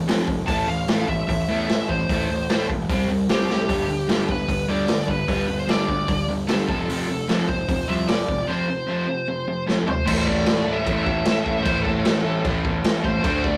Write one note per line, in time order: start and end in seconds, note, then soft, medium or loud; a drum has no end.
0.07 0.23 F1 medium
0.07 0.27 F2 loud
0.07 0.27 C3 loud
0.07 0.27 F3 loud
0.07 snare loud
0.07 open hi-hat medium
0.28 0.48 F1 medium
0.28 0.46 F2 medium
0.28 0.46 C3 medium
0.28 kick medium
0.47 0.63 A1 loud
0.47 0.67 A2 medium
0.47 0.67 E3 loud
0.47 0.67 A3 loud
0.47 0.68 A5 loud
0.47 kick loud
0.47 open hi-hat medium
0.68 0.83 A1 medium
0.68 0.86 A2 medium
0.68 0.86 E3 medium
0.68 1.08 F5 loud
0.87 1.03 A1 medium
0.87 1.07 A2 medium
0.87 1.08 E3 loud
0.87 1.08 A3 loud
0.87 snare loud
0.87 open hi-hat medium
1.08 1.23 A1 medium
1.08 1.27 A2 medium
1.08 1.27 E3 medium
1.08 1.26 E5 loud
1.08 kick medium
1.28 1.43 A1 medium
1.28 1.47 A2 medium
1.28 1.47 E3 medium
1.28 1.90 E5 loud
1.28 kick loud
1.28 open hi-hat medium
1.49 1.64 E2 medium
1.49 1.67 A2 medium
1.49 1.68 E3 loud
1.49 1.68 A3 loud
1.69 1.84 A1 medium
1.69 1.87 A2 medium
1.69 1.87 E3 medium
1.69 snare loud
1.69 open hi-hat medium
1.89 2.04 A1 medium
1.89 2.07 A2 medium
1.89 2.08 E3 medium
1.89 2.65 C5 medium
1.89 kick medium
2.09 2.24 A1 medium
2.09 2.29 A2 medium
2.09 2.29 E3 medium
2.09 2.29 A3 loud
2.09 kick loud
2.09 open hi-hat medium
2.29 2.44 A1 medium
2.29 2.47 A2 medium
2.29 2.48 E3 medium
2.49 2.65 A1 medium
2.49 2.68 A2 medium
2.49 2.69 E3 medium
2.49 2.69 A3 medium
2.49 snare loud
2.49 open hi-hat medium
2.69 2.84 E1 medium
2.69 2.87 A2 medium
2.69 2.88 E3 medium
2.69 kick medium
2.89 3.04 C2 loud
2.89 3.08 C3 medium
2.89 3.09 G3 loud
2.89 3.09 C4 loud
2.89 kick loud
2.89 open hi-hat medium
3.08 3.28 C2 medium
3.08 3.28 C3 medium
3.08 3.28 G3 medium
3.29 3.44 C2 medium
3.29 3.48 C3 loud
3.29 3.48 G3 medium
3.29 3.49 C4 medium
3.29 3.49 G4 medium
3.29 snare loud
3.29 open hi-hat medium
3.48 3.63 C2 medium
3.48 3.68 C3 medium
3.48 3.68 G3 medium
3.48 4.33 G4 medium
3.48 snare medium
3.68 3.84 G1 loud
3.68 3.88 G2 loud
3.68 3.87 D3 loud
3.68 3.88 G3 loud
3.68 kick loud
3.68 open hi-hat medium
3.88 4.03 G1 medium
3.88 4.07 G2 medium
3.88 4.07 D3 medium
4.08 4.24 G1 medium
4.08 4.28 G2 medium
4.08 4.28 D3 loud
4.08 4.28 G3 medium
4.08 snare loud
4.08 open hi-hat medium
4.29 4.44 G1 medium
4.29 4.47 G2 medium
4.29 4.47 D3 medium
4.29 4.71 B4 medium
4.29 kick medium
4.48 4.64 G1 loud
4.48 4.67 G2 medium
4.48 4.67 D3 medium
4.48 kick loud
4.48 open hi-hat medium
4.68 4.83 D2 medium
4.68 4.87 G2 loud
4.68 4.88 D3 medium
4.68 4.88 G3 loud
4.68 5.10 D5 medium
4.88 5.03 G1 medium
4.88 5.06 G2 medium
4.88 5.07 D3 medium
4.88 snare loud
4.88 open hi-hat medium
5.07 5.24 G1 medium
5.07 5.26 G2 medium
5.07 5.27 D3 medium
5.07 5.61 B4 medium
5.07 kick medium
5.28 5.43 G1 medium
5.28 5.47 G2 medium
5.28 5.47 D3 loud
5.28 5.48 G3 loud
5.28 kick loud
5.28 open hi-hat medium
5.48 5.64 G1 medium
5.48 5.67 G2 medium
5.48 5.67 D3 medium
5.59 5.70 C5 medium
5.68 5.84 G1 medium
5.68 5.87 G2 medium
5.68 5.88 D3 loud
5.68 5.88 G3 medium
5.68 6.29 D5 medium
5.68 snare loud
5.68 open hi-hat medium
5.88 6.04 D2 medium
5.88 6.07 G2 medium
5.88 6.07 D3 medium
5.88 kick medium
6.08 6.23 G1 loud
6.08 6.27 G2 medium
6.08 6.27 D3 medium
6.08 kick loud
6.08 open hi-hat medium
6.28 6.43 G1 medium
6.28 6.47 G2 medium
6.28 6.47 D3 medium
6.47 6.63 G1 medium
6.47 6.68 G2 medium
6.47 6.68 D3 loud
6.47 6.68 G3 loud
6.47 6.68 A4 medium
6.47 snare loud
6.47 open hi-hat soft
6.68 6.84 F1 medium
6.68 6.87 F2 medium
6.68 6.88 C3 loud
6.68 6.88 F3 medium
6.68 7.47 A4 medium
6.68 kick loud
6.88 7.03 F1 loud
6.88 7.08 F2 medium
6.88 7.08 C3 medium
6.88 7.08 F3 loud
6.88 open hi-hat medium
7.09 7.24 F1 loud
7.09 7.27 F2 medium
7.09 7.27 C3 medium
7.28 7.43 F1 medium
7.28 7.47 F2 loud
7.28 7.48 C3 loud
7.28 7.48 F3 loud
7.28 snare loud
7.28 open hi-hat medium
7.48 7.64 F1 medium
7.48 7.67 F2 medium
7.48 7.68 C3 medium
7.48 7.89 C5 loud
7.48 kick medium
7.68 7.83 F1 loud
7.68 7.87 F2 medium
7.68 7.87 C3 medium
7.68 kick loud
7.68 open hi-hat medium
7.88 8.04 C2 medium
7.88 8.07 F2 loud
7.88 8.08 C3 loud
7.88 8.08 F3 loud
7.88 8.08 E5 loud
8.08 8.23 F1 medium
8.08 8.27 F2 medium
8.08 8.27 C3 medium
8.08 8.50 D5 medium
8.08 snare loud
8.08 open hi-hat medium
8.28 8.43 F1 loud
8.28 8.47 F2 medium
8.28 8.47 C3 medium
8.28 kick medium
8.47 8.67 F2 medium
8.47 8.68 C3 loud
8.47 8.68 F3 loud
8.47 9.63 C5 medium
8.69 8.86 F2 medium
8.69 8.87 C3 medium
8.89 9.07 F2 medium
8.89 9.08 C3 medium
8.89 9.08 F3 loud
9.08 9.26 F2 medium
9.08 9.26 C3 medium
9.28 9.46 F2 medium
9.28 9.46 C3 medium
9.48 9.66 F2 medium
9.48 9.66 C3 medium
9.67 9.86 F2 medium
9.67 9.87 C3 medium
9.67 9.86 F3 loud
9.67 snare medium
9.87 10.05 F2 medium
9.87 10.05 C3 medium
9.87 10.05 C5 medium
9.87 floor tom medium
10.06 10.24 A1 loud
10.06 10.85 A2 medium
10.06 10.87 E3 medium
10.06 10.88 A3 loud
10.06 10.27 C5 loud
10.06 kick loud
10.06 crash loud
10.06 crash medium
10.25 10.44 A1 medium
10.25 10.73 D5 loud
10.25 kick medium
10.46 10.63 A1 medium
10.46 snare loud
10.46 crash medium
10.65 10.83 A1 medium
10.65 11.65 E3 medium
10.65 11.68 A3 medium
10.69 11.63 A2 medium
10.73 11.01 E5 medium
10.86 11.03 A1 loud
10.86 11.62 A2 medium
10.86 11.64 E3 loud
10.86 11.67 A3 medium
10.86 kick loud
10.86 crash medium
11.02 11.23 A1 medium
11.02 11.66 E5 loud
11.06 kick medium
11.25 11.42 A1 medium
11.25 snare loud
11.25 crash medium
11.46 11.63 A2 medium
11.46 kick medium
11.63 11.82 A1 loud
11.63 12.43 A2 loud
11.63 12.44 E3 loud
11.63 11.82 C5 medium
11.63 kick loud
11.63 crash medium
11.67 12.47 A3 loud
11.83 12.02 A1 medium
11.83 12.40 A4 medium
11.83 kick medium
12.05 12.22 A1 medium
12.05 snare loud
12.05 crash medium
12.24 12.42 A1 loud
12.24 13.23 A2 medium
12.24 13.23 E3 medium
12.24 13.27 A3 medium
12.44 12.61 A1 loud
12.44 13.22 A2 medium
12.44 13.23 E3 medium
12.44 13.24 A3 medium
12.44 kick loud
12.44 crash medium
12.64 12.81 A1 medium
12.64 kick medium
12.84 13.01 A1 loud
12.84 snare loud
12.84 crash medium
13.04 13.21 A1 loud
13.04 13.23 C5 medium
13.04 kick medium
13.23 13.41 D2 loud
13.23 13.57 D3 medium
13.23 13.57 A3 loud
13.23 13.57 D4 loud
13.23 13.45 C5 medium
13.23 kick loud
13.23 crash medium
13.44 13.57 D2 medium
13.44 13.57 D5 loud
13.44 kick loud